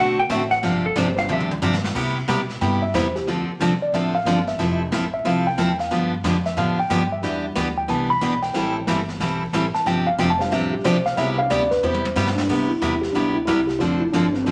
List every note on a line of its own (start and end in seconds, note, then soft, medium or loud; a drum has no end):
0.00 0.28 B1 medium
0.00 0.18 D3 medium
0.00 0.13 A3 medium
0.00 0.18 A3 medium
0.00 0.13 C4 medium
0.00 0.19 C4 medium
0.00 0.13 D4 medium
0.00 0.14 F#4 medium
0.00 0.19 F#4 medium
0.00 0.14 A4 medium
0.00 0.19 A4 medium
0.00 0.19 F#5 loud
0.19 0.30 G5 loud
0.29 0.61 A1 loud
0.29 0.41 D3 medium
0.29 0.42 A3 medium
0.29 0.41 C4 medium
0.29 0.42 F#4 medium
0.29 0.42 A4 medium
0.29 0.51 E5 loud
0.29 snare medium
0.29 hi-hat pedal medium
0.51 0.65 F#5 loud
0.51 snare soft
0.62 0.95 G1 medium
0.62 0.84 C3 medium
0.62 0.85 F3 medium
0.62 0.85 C4 medium
0.62 0.85 D4 medium
0.62 0.85 G4 medium
0.62 0.85 F5 loud
0.62 brush sweep soft
0.62 snare medium
0.86 0.96 A4 medium
0.96 1.28 G1 loud
0.96 1.07 C3 medium
0.96 1.07 F3 medium
0.96 1.08 C4 medium
0.96 1.08 D4 medium
0.96 1.08 G4 medium
0.96 1.18 C5 medium
0.96 snare medium
0.96 hi-hat pedal medium
1.16 1.59 G3 medium
1.16 1.59 C4 medium
1.16 1.59 D4 medium
1.16 1.59 F4 medium
1.16 1.60 G4 medium
1.16 1.29 F5 loud
1.16 snare soft
1.29 1.61 D2 medium
1.29 1.50 C3 medium
1.29 1.50 F3 medium
1.29 1.51 C4 medium
1.29 1.51 D4 medium
1.29 1.51 G4 medium
1.29 mid tom medium
1.33 1.44 E5 loud
1.40 mid tom medium
1.51 mid tom medium
1.62 1.94 G2 loud
1.62 1.73 C3 medium
1.62 1.74 F3 medium
1.62 1.74 C4 medium
1.62 1.74 D4 medium
1.62 1.74 G4 medium
1.62 hi-hat pedal medium
1.62 mid tom medium
1.73 snare medium
1.84 snare loud
1.95 2.16 C3 medium
1.95 2.27 C3 medium
1.95 2.17 G3 medium
1.95 2.17 B3 medium
1.95 2.17 E4 medium
1.95 2.17 G4 medium
1.95 brush sweep medium
1.95 kick medium
1.95 snare medium
1.95 crash medium
2.28 2.60 B2 medium
2.28 2.40 C3 medium
2.28 2.40 G3 medium
2.28 2.40 B3 medium
2.28 2.40 E4 medium
2.28 2.40 G4 medium
2.28 snare medium
2.28 hi-hat pedal medium
2.50 snare soft
2.61 2.93 G2 medium
2.61 2.83 C3 medium
2.61 2.83 G3 medium
2.61 2.83 B3 medium
2.61 2.83 E4 medium
2.61 2.83 G4 medium
2.61 2.82 G5 medium
2.61 brush sweep medium
2.61 snare soft
2.82 2.94 E5 medium
2.94 3.26 E2 loud
2.94 3.06 C3 medium
2.94 3.06 G3 medium
2.94 3.06 B3 medium
2.94 3.06 E4 medium
2.94 3.06 G4 medium
2.94 3.15 C5 medium
2.94 snare medium
2.94 hi-hat pedal medium
3.15 3.27 G4 medium
3.15 snare soft
3.27 3.47 D2 medium
3.27 3.49 D3 medium
3.27 3.49 F3 medium
3.27 3.49 C4 medium
3.27 3.49 D4 medium
3.27 3.41 F4 medium
3.27 3.50 A4 medium
3.27 brush sweep medium
3.27 snare soft
3.48 muted upright bass stroke soft
3.60 3.80 C2 loud
3.60 3.72 D3 medium
3.60 3.72 F3 medium
3.60 3.72 C4 medium
3.60 3.72 D4 medium
3.60 3.73 A4 medium
3.60 snare medium
3.60 hi-hat pedal medium
3.82 3.93 D5 medium
3.92 4.25 A1 medium
3.92 4.15 D3 medium
3.92 4.15 F3 medium
3.92 4.15 C4 medium
3.92 4.15 D4 medium
3.92 4.15 A4 medium
3.92 4.14 E5 medium
3.92 brush sweep medium
3.92 snare soft
4.15 4.45 F5 loud
4.25 4.58 G1 loud
4.25 4.38 D3 medium
4.25 4.38 F3 medium
4.25 4.38 C4 medium
4.25 4.38 D4 medium
4.25 4.38 A4 medium
4.25 snare medium
4.25 hi-hat pedal medium
4.47 4.78 E5 medium
4.47 snare soft
4.58 4.91 F1 medium
4.58 4.81 F3 medium
4.58 4.81 C4 medium
4.58 4.81 E4 medium
4.58 4.81 A4 medium
4.58 brush sweep medium
4.58 snare medium
4.92 5.24 A1 medium
4.92 5.04 F3 medium
4.92 5.04 C4 medium
4.92 5.04 E4 medium
4.92 5.04 A4 medium
4.92 snare medium
4.92 hi-hat pedal medium
5.14 5.25 E5 medium
5.25 5.57 C2 medium
5.25 5.47 F3 medium
5.25 5.47 C4 medium
5.25 5.47 E4 medium
5.25 5.47 A4 medium
5.25 5.47 F5 medium
5.25 brush sweep soft
5.25 snare medium
5.47 5.77 G5 loud
5.58 5.90 E2 loud
5.58 5.69 F3 medium
5.58 5.70 C4 medium
5.58 5.70 E4 medium
5.58 5.70 A4 medium
5.58 snare medium
5.58 hi-hat pedal medium
5.79 6.10 F5 medium
5.79 snare soft
5.91 6.23 G2 loud
5.91 6.12 D3 medium
5.91 6.13 F3 medium
5.91 6.13 B3 medium
5.91 6.13 D4 medium
5.91 6.13 G4 medium
5.91 brush sweep medium
5.91 snare medium
6.23 6.56 F2 medium
6.23 6.36 D3 medium
6.23 6.36 F3 medium
6.23 6.36 B3 medium
6.23 6.36 D4 medium
6.23 6.36 G4 medium
6.23 snare medium
6.23 hi-hat pedal medium
6.45 6.57 E5 medium
6.45 snare soft
6.57 6.89 A2 medium
6.57 6.78 D3 medium
6.57 6.79 F3 medium
6.57 6.79 B3 medium
6.57 6.79 D4 medium
6.57 6.79 G4 medium
6.57 6.78 F5 medium
6.57 brush sweep soft
6.57 snare medium
6.79 7.09 G5 loud
6.89 7.22 G2 loud
6.89 7.01 D3 medium
6.89 7.02 F3 medium
6.89 7.02 B3 medium
6.89 7.02 D4 medium
6.89 7.02 G4 medium
6.89 snare medium
6.89 hi-hat pedal medium
7.12 7.42 E5 medium
7.21 7.54 E2 medium
7.21 7.44 E3 medium
7.21 8.14 G3 medium
7.21 8.14 B3 medium
7.21 7.45 B3 medium
7.21 8.14 D4 medium
7.21 7.45 D4 medium
7.21 8.14 E4 medium
7.21 8.15 G4 medium
7.21 7.45 G4 medium
7.21 brush sweep medium
7.21 snare medium
7.55 7.87 D2 loud
7.55 7.67 E3 medium
7.55 7.67 B3 medium
7.55 7.67 D4 medium
7.55 7.67 G4 medium
7.55 snare medium
7.55 hi-hat pedal medium
7.78 7.89 G5 medium
7.88 8.20 C2 medium
7.88 8.10 E3 medium
7.88 8.10 B3 medium
7.88 8.10 D4 medium
7.88 8.10 G4 medium
7.88 8.10 A5 medium
7.88 brush sweep medium
7.88 snare soft
8.10 8.41 B5 loud
8.21 8.53 B1 loud
8.21 8.33 E3 medium
8.21 8.33 B3 medium
8.21 8.33 D4 medium
8.21 8.33 G4 medium
8.21 snare medium
8.21 hi-hat pedal medium
8.42 8.73 G5 medium
8.42 snare soft
8.53 8.86 A1 medium
8.53 8.76 E3 medium
8.53 8.73 G3 medium
8.53 8.76 G3 medium
8.53 8.73 A3 medium
8.53 8.73 C4 medium
8.53 8.76 C4 medium
8.53 8.73 E4 medium
8.53 8.76 E4 medium
8.53 8.73 G4 medium
8.53 8.76 A4 medium
8.53 brush sweep medium
8.53 snare medium
8.87 9.19 G1 medium
8.87 8.99 E3 medium
8.87 8.99 G3 medium
8.87 8.99 C4 medium
8.87 8.99 E4 medium
8.87 8.99 A4 medium
8.87 snare medium
8.87 hi-hat pedal medium
9.08 snare soft
9.20 9.52 B1 medium
9.20 9.42 E3 medium
9.20 9.42 G3 medium
9.20 9.42 C4 medium
9.20 9.42 E4 medium
9.20 9.42 A4 medium
9.20 brush sweep medium
9.20 snare medium
9.53 9.73 A1 loud
9.53 9.65 E3 medium
9.53 9.65 G3 medium
9.53 9.65 C4 medium
9.53 9.65 E4 medium
9.53 9.65 A4 medium
9.53 snare medium
9.53 hi-hat pedal medium
9.74 9.86 A5 medium
9.74 snare soft
9.86 10.18 G1 medium
9.86 10.07 C3 medium
9.86 10.08 F3 medium
9.86 10.08 C4 medium
9.86 10.08 D4 medium
9.86 10.08 G4 medium
9.86 10.07 G5 loud
9.86 brush sweep medium
9.86 snare medium
10.07 10.18 F5 loud
10.18 10.50 F1 loud
10.18 10.30 C3 medium
10.18 10.30 F3 medium
10.18 10.30 C4 medium
10.18 10.30 D4 medium
10.18 10.31 G4 medium
10.18 10.30 G5 medium
10.18 snare medium
10.18 hi-hat pedal medium
10.30 10.41 A5 loud
10.39 10.81 G3 medium
10.39 10.81 C4 medium
10.39 10.82 D4 medium
10.39 10.82 F4 medium
10.39 10.82 G4 medium
10.39 10.52 F5 medium
10.39 snare soft
10.51 10.83 A1 medium
10.51 10.73 C3 medium
10.51 10.73 F3 medium
10.51 10.73 C4 medium
10.51 10.73 D4 medium
10.51 10.73 G4 medium
10.51 10.72 E5 medium
10.51 brush sweep medium
10.51 snare medium
10.73 10.84 G4 medium
10.84 11.16 B1 loud
10.84 10.96 C3 medium
10.84 10.96 F3 medium
10.84 10.96 C4 medium
10.84 10.96 D4 medium
10.84 10.96 G4 medium
10.84 11.05 C5 medium
10.84 snare medium
10.84 hi-hat pedal medium
11.06 11.17 F5 loud
11.06 snare soft
11.16 11.49 C2 medium
11.16 11.39 C3 medium
11.16 11.39 G3 medium
11.16 11.39 B3 medium
11.16 11.35 C4 medium
11.16 11.36 C#4 medium
11.16 11.36 D#4 medium
11.16 11.39 E4 medium
11.16 11.36 F4 medium
11.16 11.39 G4 medium
11.16 11.36 G#4 medium
11.16 11.38 E5 medium
11.16 brush sweep medium
11.16 snare medium
11.37 12.08 B3 medium
11.37 12.08 C4 medium
11.37 12.09 D4 medium
11.37 12.09 E4 medium
11.37 12.09 G4 medium
11.37 11.50 F5 loud
11.50 11.82 D2 loud
11.50 11.62 C3 medium
11.50 11.62 G3 medium
11.50 11.62 B3 medium
11.50 11.62 E4 medium
11.50 11.62 G4 medium
11.50 11.71 D5 medium
11.50 snare medium
11.50 hi-hat pedal medium
11.71 11.82 B4 medium
11.71 snare soft
11.82 12.15 E2 medium
11.82 12.04 C3 medium
11.82 12.05 G3 medium
11.82 12.05 B3 medium
11.82 12.05 E4 medium
11.82 12.05 G4 medium
11.82 12.40 C5 medium
11.82 high tom medium
11.94 high tom medium
12.05 high tom medium
12.16 12.48 G2 loud
12.16 12.27 C3 medium
12.16 12.27 G3 medium
12.16 12.27 B3 medium
12.16 12.28 E4 medium
12.16 12.28 G4 medium
12.16 snare medium
12.16 hi-hat pedal medium
12.27 snare medium
12.35 12.70 D4 medium
12.35 snare loud
12.48 12.68 C2 medium
12.48 12.70 C3 medium
12.48 12.71 G3 medium
12.48 13.40 B3 medium
12.48 12.71 B3 medium
12.48 13.40 C4 medium
12.48 13.40 D4 medium
12.48 13.40 E4 medium
12.48 12.71 E4 medium
12.48 13.41 G4 medium
12.48 12.71 G4 medium
12.48 brush sweep soft
12.48 kick medium
12.48 snare soft
12.48 crash medium
12.68 13.00 E4 medium
12.68 muted upright bass stroke soft
12.81 13.13 E2 medium
12.81 12.93 C3 medium
12.81 12.93 G3 medium
12.81 12.93 B3 medium
12.81 12.93 E4 medium
12.81 12.94 G4 medium
12.81 snare medium
12.81 hi-hat pedal medium
13.01 13.14 G4 medium
13.01 snare soft
13.13 13.46 D2 medium
13.13 13.36 C3 medium
13.13 13.36 G3 medium
13.13 13.37 B3 medium
13.13 13.35 D4 medium
13.13 13.37 E4 medium
13.13 13.37 G4 medium
13.13 brush sweep soft
13.13 snare soft
13.34 13.44 E4 medium
13.46 13.79 C2 loud
13.46 13.59 C3 medium
13.46 13.59 G3 medium
13.46 13.59 B3 medium
13.46 13.68 E4 medium
13.46 13.59 E4 medium
13.46 13.59 G4 medium
13.46 snare medium
13.46 hi-hat pedal medium
13.67 13.80 G4 medium
13.67 snare soft
13.79 14.12 F1 medium
13.79 14.02 D3 medium
13.79 13.99 F3 medium
13.79 14.02 F3 medium
13.79 13.99 A3 medium
13.79 13.99 C4 medium
13.79 14.02 C4 medium
13.79 13.99 D4 medium
13.79 14.02 D4 medium
13.79 14.02 F4 loud
13.79 14.00 F4 medium
13.79 14.02 A4 medium
13.79 brush sweep medium
13.79 snare soft
14.00 14.12 E4 medium
14.12 14.45 G1 medium
14.12 14.25 D3 medium
14.12 14.25 F3 medium
14.12 14.25 C4 medium
14.12 14.32 D4 medium
14.12 14.25 D4 medium
14.12 14.25 A4 medium
14.12 snare medium
14.12 hi-hat pedal medium
14.33 14.46 C4 medium
14.33 snare soft
14.45 14.51 A1 medium
14.45 14.51 D3 medium
14.45 14.51 F3 medium
14.45 14.51 C4 medium
14.45 14.51 D4 medium
14.45 14.51 A4 medium
14.45 brush sweep medium
14.45 snare soft